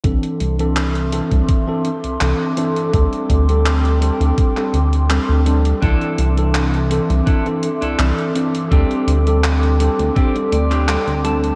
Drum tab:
HH |xxxxxxxxx-xxx-xx|xxxxxxxxx-xxx-xx|xxxxxxxxxxxxxxxx|xxxxxxxxxxxxxxxx|
CP |----x-------x---|----x----x--x---|----x-------x---|----x------xx---|
BD |o------oo-------|o-o-----o-------|o-------o-------|o-------o-------|